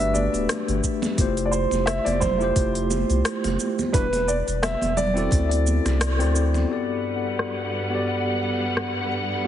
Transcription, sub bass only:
Already playing: G1
0.34 D1
0.68 G1
1.18 F1
1.72 F1
2.06 F1
2.56 F1
3.10 C2
3.44 F1
3.94 E1
4.48 E1
4.82 E1
5.32 D2
5.85 C2
6.20 D2

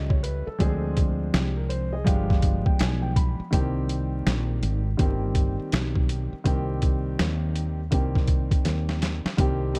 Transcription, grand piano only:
Already playing: G3 A3 C#4 E4
0.09 C#5
0.23 B4
0.47 A4
0.58 F3 G#3 C4 D4 G#4
1.33 G4
1.56 A#4
1.69 C5
1.92 G#4 D#5
2.04 F3 G#3 B3 D4 G4 F5
2.29 F5
2.66 G5
2.79 G#5
3.02 G5
3.16 B5
3.51 D#3 G3 A#3 C4 G4
4.97 D#3 G3 A#3 C4 G4
6.44 D#3 G3 A#3 C4 G4
7.91 D#3 G3 A#3 C4 G4
9.37 D#3 G3 A#3 C4 G4
9.73 C3 G3 A#3 C4

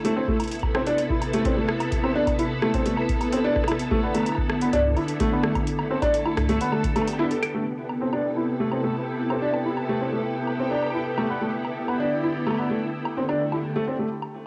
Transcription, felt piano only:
0.05 A3
0.16 C4
0.28 A3
0.75 C4
0.87 D4
1.10 E4
1.33 A3
1.45 C4
1.57 A3
2.04 C4
2.15 D4
2.39 E4
2.62 A3
2.74 C4
2.86 A3
3.33 C4
3.44 D4
3.68 E4
3.91 A3
4.03 B3
4.15 A3
4.62 B3
4.73 D4
4.97 E4
5.20 A3
5.32 B3
5.44 A3
5.90 C4
6.02 D4
6.26 E4
6.49 A3
6.61 B3
6.73 A3
6.96 A3
7.19 E4
7.31 A4
7.55 A3
8.01 C4
8.13 D4
8.37 E4
8.60 A3
8.72 C4
8.83 A3
9.30 C4
9.42 D4
9.65 E4
9.89 A3
10.01 C4
10.12 A3
10.59 C4
10.71 D4
10.94 E4
11.18 A3
11.30 B3
11.41 A3
11.88 B3
12.00 D4
12.23 E4
12.47 A3
12.58 B3
12.70 A3
13.17 C4
13.29 D4
13.52 E4
13.76 A3
13.87 C4
13.99 A3

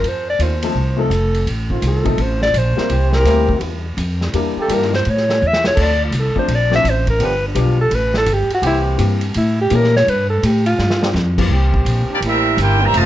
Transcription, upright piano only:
0.62 F3 A3 C4 D#4 A4
0.97 F3 A3 C4 D#4 A4
2.04 F3 A3 C4 D#4 A4
2.76 G3 A#3 C4 E4 A#4
3.25 G3 A#3 C4 E4 A#4
4.34 G3 A#3 D4 E4 A#4
4.70 G3 A#3 D4 E4 A#4
6.36 F3 A3 C4 D4 A4
6.70 F3 A3 C4 D4 C5
7.55 F3 G3 B3 D4 G4
8.98 E3 G3 A#3 C4 G4
9.71 E3 A3 A#3 C#4 G4
11.38 E3 G3 A#3 C4 G4

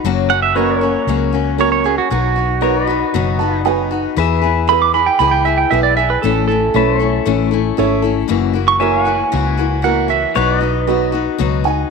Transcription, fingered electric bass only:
0.04 F#1
1.07 C#2
2.11 B1
3.14 F#1
4.17 E2
5.20 C#2
5.72 B1
6.24 A1
6.75 B1
7.27 A1
7.78 G#1
8.30 F#1
9.34 C#2
10.36 B1
11.40 C#2

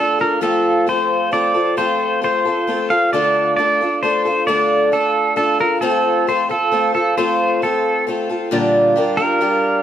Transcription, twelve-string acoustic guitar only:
Already playing: A3
0.00 D4 F4 A4
0.19 D4 F4 A4
0.41 F3 A3 C4 F4 A4
0.87 A3 C4 F4 A4
1.31 A3 C4 F4 A4
1.54 C4 F4 A4
1.77 F3 A3 C4 F4 A4
2.21 A3 C4 F4 A4
2.45 C4 F4 A4
2.67 A3 C4 F4 A4
2.90 C4 F4 A4
3.13 D3 A3 D4 F4 A4
3.58 A3 D4 F4 A4
3.81 D4 F4 A4
4.03 A3 D4 F4 A4
4.25 D4 F4 A4
4.48 D3 A3 D4 F4 A4
4.92 A3 D4 F4 A4
5.36 A3 D4 F4 A4
5.60 D4 F4 A4
5.82 F3 A3 C4 F4 A4
6.27 A3 C4 F4 A4
6.49 C4 F4 A4
6.72 A3 C4 F4 A4
6.94 C4 F4 A4
7.17 F3 A3 C4 F4 A4
7.62 A3 C4 F4 A4
8.07 A3 C4 F4 A4
8.29 C4 F4 A4
8.51 A#2 D3 G3 D4 F4 A#4
8.96 G3 D4 F4 A#4
9.18 G3 D4 F4 A#4
9.41 G3 D4 F4 A#4

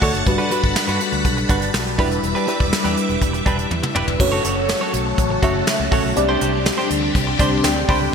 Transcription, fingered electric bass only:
0.02 D2
0.14 F#1
0.27 G1
0.64 G1
0.76 muted fingered electric bass stroke
0.88 G2
1.12 D2
1.25 B1
1.49 G1
1.74 B1
1.99 E1
2.23 E1
2.60 E1
2.73 muted fingered electric bass stroke
2.85 E2
3.09 E1
3.22 E1
3.46 E1
3.71 E2
3.95 E1
4.08 F1
4.20 F#1
4.45 F#1
4.94 B1
5.18 A1
5.43 F#1
5.80 C#2
5.92 A#1
6.04 B1
6.17 C2
6.41 C2
6.90 D2
7.15 C2
7.39 C2
7.64 D2
7.89 C#2

